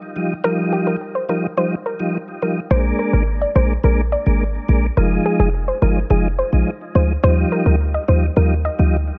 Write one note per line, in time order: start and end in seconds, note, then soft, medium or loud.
0.16 0.33 F3 medium
0.16 0.34 G3 medium
0.16 0.34 D#4 medium
0.44 0.96 F3 medium
0.44 0.96 G3 medium
0.44 0.97 D#4 loud
0.44 0.54 A#4 loud
0.73 0.82 G4 medium
0.87 0.96 A#4 medium
1.15 1.24 C5 medium
1.29 1.47 F3 medium
1.29 1.47 G3 medium
1.29 1.47 D#4 medium
1.29 1.39 A#4 medium
1.57 1.75 F3 medium
1.57 1.75 G3 medium
1.57 1.75 D#4 medium
1.57 1.67 C5 medium
1.86 1.95 A#4 medium
1.99 2.17 F3 medium
1.99 2.17 G3 medium
1.99 2.18 D#4 medium
2.42 2.60 F3 medium
2.42 2.60 G3 medium
2.42 2.60 D#4 medium
2.42 2.52 A#4 medium
2.71 2.92 A#1 loud
2.71 3.23 G#3 medium
2.71 3.23 A#3 medium
2.71 3.23 D4 loud
2.71 2.80 C5 loud
2.99 3.08 A#4 medium
3.13 3.45 G#1 medium
3.13 3.22 A#4 medium
3.41 3.51 D5 medium
3.55 3.77 A#1 medium
3.55 3.73 G#3 medium
3.55 3.73 A#3 medium
3.55 3.73 D4 medium
3.55 3.65 C5 medium
3.84 4.16 A#1 loud
3.84 4.01 G#3 medium
3.84 4.01 A#3 medium
3.84 4.02 D4 loud
3.84 3.93 A#4 medium
4.12 4.21 D5 medium
4.26 4.59 G#1 medium
4.26 4.44 G#3 medium
4.26 4.44 A#3 medium
4.26 4.44 D4 medium
4.69 4.90 A#1 loud
4.69 4.86 G#3 medium
4.69 4.86 A#3 medium
4.69 4.87 D4 medium
4.97 5.19 F1 loud
4.97 5.49 F3 medium
4.97 5.49 G#3 medium
4.97 5.50 D#4 loud
4.97 5.06 A#4 loud
5.26 5.35 G#4 medium
5.40 5.72 F1 loud
5.40 5.49 G#4 medium
5.68 5.77 C5 medium
5.82 6.03 G1 medium
5.82 6.00 F3 medium
5.82 6.00 G#3 medium
5.82 6.00 D#4 medium
5.82 5.91 A#4 medium
6.10 6.42 F1 loud
6.10 6.28 F3 medium
6.10 6.28 G#3 medium
6.10 6.28 D#4 medium
6.10 6.20 G#4 medium
6.39 6.48 C5 medium
6.53 6.63 A#1 medium
6.53 6.70 F3 medium
6.53 6.70 G#3 medium
6.53 6.71 D#4 medium
6.95 7.17 D2 medium
6.95 7.13 F3 medium
6.95 7.13 G#3 medium
6.95 7.13 D#4 medium
6.95 7.05 C5 medium
7.23 7.45 D#2 loud
7.23 7.75 F3 medium
7.23 7.76 G3 medium
7.23 7.76 D#4 loud
7.23 7.33 C5 loud
7.52 7.61 A#4 medium
7.66 7.98 D2 loud
7.66 7.75 A#4 medium
7.94 8.04 D#5 medium
8.08 8.30 D#2 medium
8.08 8.26 F3 medium
8.08 8.26 G3 medium
8.08 8.26 D#4 medium
8.08 8.18 C5 medium
8.36 8.69 D#2 loud
8.36 8.54 F3 medium
8.36 8.54 G3 medium
8.36 8.54 D#4 loud
8.36 8.46 A#4 medium
8.65 8.74 D#5 medium
8.79 9.11 D2 medium
8.79 8.97 F3 medium
8.79 8.97 G3 medium
8.79 8.97 D#4 medium